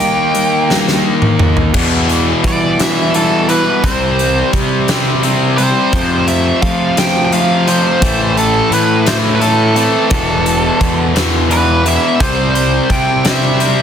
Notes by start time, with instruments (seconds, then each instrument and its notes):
Already playing: overdriven electric guitar D#3 A#3 D#4, lead electric guitar G5
0.00 clean electric guitar D#3 G3, closed hi-hat
0.34 clean electric guitar D#3 G3, closed hi-hat
0.68 clean electric guitar D#3 G3 A#3, snare
0.88 snare
1.04 clean electric guitar D#3 G3
1.22 mid tom
1.39 mid tom
1.57 floor tom
1.73 picked electric bass E2, overdriven electric guitar E2 B2 E3, clean electric guitar E3, kick, crash
2.09 clean electric guitar E3, closed hi-hat
2.43 picked electric bass E3, clean electric guitar G3, lead electric guitar D5, kick, closed hi-hat
2.78 overdriven electric guitar E2 B2 E3, clean electric guitar E3, lead electric guitar E5, snare, closed hi-hat
3.14 overdriven electric guitar E2 B2 E3, clean electric guitar G3, lead electric guitar A4, closed hi-hat
3.48 overdriven electric guitar E2 B2 E3, clean electric guitar B3, lead electric guitar B4, closed hi-hat
3.83 picked electric bass C2, clean electric guitar C3, overdriven electric guitar C3 G3 C4, lead electric guitar C5, kick, closed hi-hat
4.18 clean electric guitar E3, closed hi-hat
4.53 picked electric bass C3, clean electric guitar G3, kick, closed hi-hat
4.88 overdriven electric guitar C3 G3 C4, clean electric guitar E3, snare, closed hi-hat
5.23 overdriven electric guitar C3 G3 C4, clean electric guitar G3, closed hi-hat
5.57 overdriven electric guitar C3 G3 C4, clean electric guitar C4, lead electric guitar C5, closed hi-hat
5.93 picked electric bass F2, overdriven electric guitar F2 C3 F3, kick, closed hi-hat
6.27 clean electric guitar F3, lead electric guitar E5, closed hi-hat
6.62 picked electric bass F3, clean electric guitar A3, lead electric guitar F5, kick, closed hi-hat
6.97 overdriven electric guitar F2 C3 F3, clean electric guitar F3, lead electric guitar G5, snare, closed hi-hat
7.25 lead electric guitar G5
7.32 overdriven electric guitar F2 C3 F3, clean electric guitar A3, lead electric guitar F5, closed hi-hat
7.67 overdriven electric guitar F2 C3 F3, clean electric guitar C4, lead electric guitar C5, closed hi-hat
8.01 picked electric bass A1, clean electric guitar A2, overdriven electric guitar A2 E3 A3, kick, closed hi-hat
8.36 clean electric guitar E3, lead electric guitar A4, closed hi-hat
8.70 picked electric bass A2, clean electric guitar A3, lead electric guitar B4, closed hi-hat
9.06 overdriven electric guitar A2 E3 A3, clean electric guitar E3, lead electric guitar C5, snare, closed hi-hat
9.35 lead electric guitar B4
9.40 overdriven electric guitar A2 E3 A3, clean electric guitar A3, lead electric guitar A4, closed hi-hat
9.75 overdriven electric guitar A2 E3 A3, clean electric guitar C4, closed hi-hat
10.10 picked electric bass E1, overdriven electric guitar E2 B2 E3, kick, closed hi-hat
10.46 closed hi-hat
10.81 picked electric bass E2, kick, closed hi-hat
11.14 overdriven electric guitar E2 B2 E3, snare, closed hi-hat
11.48 overdriven electric guitar E2 B2 E3, lead electric guitar B4, closed hi-hat
11.85 overdriven electric guitar E2 B2 E3, lead electric guitar E5, closed hi-hat
12.20 picked electric bass C2, overdriven electric guitar C3 G3 C4, lead electric guitar C5, kick, closed hi-hat
12.55 lead electric guitar C5, closed hi-hat
12.90 picked electric bass C3, lead electric guitar G5, kick, closed hi-hat
13.25 overdriven electric guitar C3 G3 C4, lead electric guitar E5, snare, closed hi-hat
13.60 overdriven electric guitar C3 G3 C4, closed hi-hat